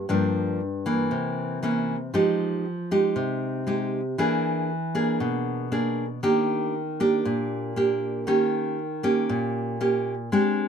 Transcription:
0.09 G2 F3 A#3 D4
0.86 E3 A#3
1.11 C3
1.63 E3 A#3 C#4
2.14 F3 G#3 D#4 G4
2.91 G#3 D#4 G4
3.16 C3
3.67 G#3 D#4 G4
4.18 E3 A#3 D4 G#4
4.95 A#3 D4 G#4
5.20 B2
5.72 A#3 D4 G#4
6.23 D#3 A#3 D4 G4
7.00 A#3 D4 G4
7.25 A#2
7.76 A#3 D4 G4
8.27 D#3 A#3 C#4 G4
9.03 A#3 C#4 G4
9.29 A#2
9.81 A#3 C#4 G4
10.32 G#3 C4 D4 G4

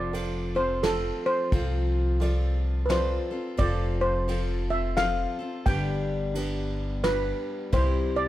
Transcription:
Already playing: F1 F3 C4 F4 A4 D5
0.12 F3 C4 F4 A4 C5, ride
0.55 C4 F4 A4 C5
0.83 F3 C4 F4 A4 C5, snare, ride
1.26 C5
1.51 C2 F3 C4 F4 A4 C5, kick, ride
2.20 F3 C4 F4 A4 D5, ride
2.86 F3 F4 B4
2.90 C4 F4 A4 C5 D5, snare, ride
3.31 C4 F4 A4
3.57 F1 F3 C4 F4 A4 C5 D5, kick, ride
4.01 C5
4.27 F3 C4 F4 A4 C5, ride
4.70 C4 F4 A4 E5
4.96 F3 C4 F4 A4 C5 F5, snare, ride
5.39 C4 F4 A4
5.65 G1 G2 D3 G3 B3 D4 G4 B4 G5, kick, ride
6.34 G3 B3 D4 G4 B4, ride
6.38 G4
7.03 G3 B3 D4 G4 B4, snare, ride
7.72 C2 C3 G3 C4 E4 G4 C5, kick, ride
8.16 D5

